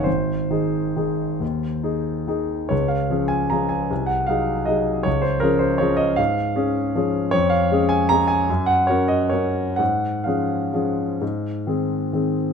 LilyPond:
\new Staff \with { instrumentName = "Grand piano" } { \time 3/4 \key des \major \tempo 4 = 149 << { c''2.~ | c''2 r4 | des''8 f''4 aes''8 bes''8 aes''8~ | aes''8 ges''8 f''4 ees''4 |
des''8 c''8 bes'8 c''8 des''8 ees''8 | f''2. | des''8 f''4 aes''8 bes''8 aes''8~ | aes''8 ges''8 des''8 ees''8 des''4 |
ges''4 f''2~ | f''2~ f''8 r8 | } \\ { aes,,4 <ees ees' aes'>4 <ees ees' aes'>4 | ees,4 <ees' aes'>4 <ees ees' aes'>4 | des,4 <f des' aes'>4 <f des' aes'>4 | c,4 <ges ees' aes'>4 <ges ees' aes'>4 |
des,4 <f des' aes'>4 <f des' aes'>4 | aes,4 <des' aes'>4 <f des' aes'>4 | f,4 <aes des' aes'>4 <aes des' aes'>4 | ges,4 <ges des' bes'>4 <ges des' bes'>4 |
aes,4 <f des' aes'>4 <f des' aes'>4 | aes,4 <ees c' aes'>4 <ees c' aes'>4 | } >> }